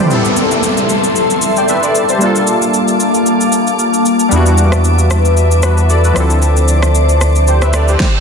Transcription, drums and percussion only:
0.10 shaker medium
0.25 shaker soft
0.37 shaker medium
0.51 shaker medium
0.63 shaker medium
0.77 shaker soft
0.89 shaker medium
1.04 shaker medium
1.16 shaker medium
1.30 shaker medium
1.42 shaker loud
1.56 shaker soft
1.68 shaker medium
1.83 shaker soft
1.95 shaker medium
2.09 shaker medium
2.21 shaker medium
2.36 shaker soft
2.47 shaker medium
2.62 shaker medium
2.74 shaker medium
2.88 shaker soft
3.00 shaker medium
3.14 shaker medium
3.26 shaker medium
3.41 shaker medium
3.52 shaker medium
3.67 shaker soft
3.79 shaker medium
3.94 shaker soft
4.06 shaker medium
4.19 shaker medium
4.32 shaker medium
4.46 shaker medium
4.58 shaker medium
4.72 cross-stick medium
4.72 shaker medium
4.84 shaker medium
4.99 shaker soft
5.11 cross-stick medium
5.11 shaker medium
5.25 shaker soft
5.37 shaker medium
5.51 shaker medium
5.63 cross-stick medium
5.63 shaker loud
5.78 shaker soft
5.90 shaker medium
6.04 shaker soft
6.16 cross-stick medium
6.16 shaker medium
6.30 shaker medium
6.42 shaker medium
6.57 shaker medium
6.68 shaker medium
6.83 cross-stick medium
6.83 shaker medium
6.95 shaker medium
7.09 shaker soft
7.21 cross-stick medium
7.21 shaker medium
7.36 shaker medium
7.47 shaker medium
7.62 cross-stick medium
7.62 shaker medium
7.73 cross-stick medium
7.73 shaker medium
7.88 shaker soft
8.00 kick loud
8.00 snare medium

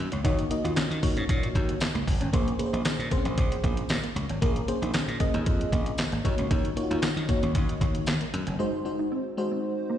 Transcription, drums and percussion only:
0.12 closed hi-hat medium
0.25 kick loud
0.25 closed hi-hat loud
0.39 closed hi-hat soft
0.51 closed hi-hat medium
0.65 closed hi-hat medium
0.76 snare loud
0.76 clap medium
0.76 closed hi-hat medium
0.76 tambourine medium
0.92 closed hi-hat soft
1.03 kick medium
1.03 open hi-hat medium
1.17 closed hi-hat soft
1.29 kick loud
1.29 closed hi-hat medium
1.43 closed hi-hat medium
1.55 kick medium
1.55 closed hi-hat medium
1.69 closed hi-hat medium
1.80 snare loud
1.80 clap medium
1.80 closed hi-hat medium
1.80 tambourine medium
1.95 closed hi-hat soft
2.08 kick loud
2.08 open hi-hat medium
2.21 closed hi-hat medium
2.33 kick loud
2.33 closed hi-hat loud
2.48 closed hi-hat soft
2.59 closed hi-hat medium
2.74 closed hi-hat medium
2.85 snare loud
2.85 clap medium
2.85 closed hi-hat medium
2.85 tambourine loud
3.00 closed hi-hat soft
3.11 kick medium
3.11 closed hi-hat medium
3.25 closed hi-hat soft
3.38 kick loud
3.38 closed hi-hat medium
3.52 closed hi-hat medium
3.64 kick medium
3.64 closed hi-hat medium
3.77 closed hi-hat medium
3.89 snare loud
3.89 clap medium
3.89 closed hi-hat medium
3.89 tambourine medium
4.04 closed hi-hat soft
4.16 closed hi-hat medium
4.29 closed hi-hat medium
4.42 kick loud
4.42 closed hi-hat medium
4.56 closed hi-hat soft
4.68 closed hi-hat medium
4.83 closed hi-hat medium
4.94 snare loud
4.94 clap medium
4.94 closed hi-hat medium
4.94 tambourine medium
5.09 closed hi-hat soft
5.20 kick medium
5.20 closed hi-hat medium
5.34 closed hi-hat soft
5.46 kick loud
5.46 closed hi-hat medium
5.61 closed hi-hat medium
5.72 kick medium
5.72 closed hi-hat medium
5.86 closed hi-hat medium
5.98 snare medium
5.98 clap medium
5.98 closed hi-hat medium
5.98 tambourine medium
6.12 closed hi-hat soft
6.25 kick medium
6.25 closed hi-hat medium
6.38 closed hi-hat medium
6.51 kick loud
6.51 closed hi-hat loud
6.65 closed hi-hat soft
6.77 closed hi-hat medium
6.91 closed hi-hat medium
7.02 snare loud
7.02 clap medium
7.02 closed hi-hat medium
7.02 tambourine medium
7.17 closed hi-hat soft
7.29 kick loud
7.29 closed hi-hat medium
7.43 closed hi-hat soft
7.55 kick loud
7.55 closed hi-hat medium
7.69 closed hi-hat medium
7.81 kick medium
7.81 closed hi-hat medium
7.95 closed hi-hat medium
8.06 snare loud
8.06 clap medium
8.06 closed hi-hat medium
8.06 tambourine medium
8.21 closed hi-hat soft
8.34 closed hi-hat medium
8.47 closed hi-hat medium

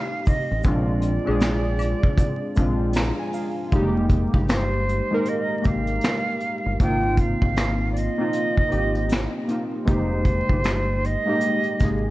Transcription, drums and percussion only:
0.25 kick medium
0.25 open hi-hat soft
0.25 shaker medium
0.63 kick loud
0.63 closed hi-hat medium
0.63 shaker medium
1.01 closed hi-hat medium
1.01 shaker medium
1.27 high woodblock medium
1.40 finger snap medium
1.40 snare loud
1.40 closed hi-hat medium
1.40 shaker medium
1.79 closed hi-hat medium
1.79 high woodblock medium
1.79 shaker medium
2.03 kick medium
2.17 kick loud
2.17 closed hi-hat medium
2.17 shaker medium
2.56 kick medium
2.56 closed hi-hat medium
2.56 shaker medium
2.93 finger snap medium
2.93 snare loud
2.93 closed hi-hat medium
2.93 shaker medium
3.32 open hi-hat soft
3.32 shaker medium
3.72 kick loud
3.72 closed hi-hat medium
4.09 kick medium
4.09 closed hi-hat medium
4.34 kick loud
4.48 finger snap medium
4.48 snare loud
4.48 closed hi-hat medium
4.89 closed hi-hat medium
5.25 closed hi-hat medium
5.64 kick medium
5.64 closed hi-hat medium
5.87 closed hi-hat soft
6.01 finger snap medium
6.01 snare loud
6.01 closed hi-hat medium
6.40 closed hi-hat medium
6.80 kick loud
6.80 closed hi-hat medium
7.17 kick medium
7.17 closed hi-hat medium
7.42 kick medium
7.56 finger snap medium
7.56 snare loud
7.56 closed hi-hat medium
7.96 closed hi-hat medium
8.33 closed hi-hat medium
8.58 kick medium
8.72 closed hi-hat medium
8.95 closed hi-hat soft
9.09 finger snap medium
9.09 snare loud
9.09 closed hi-hat medium
9.48 closed hi-hat medium
9.87 kick loud
9.87 closed hi-hat medium
10.25 kick medium
10.25 closed hi-hat medium
10.49 kick medium
10.64 finger snap medium
10.64 snare loud
10.64 closed hi-hat medium
11.04 closed hi-hat medium
11.41 closed hi-hat medium
11.63 closed hi-hat soft
11.79 kick medium
11.79 snare soft
11.79 closed hi-hat medium

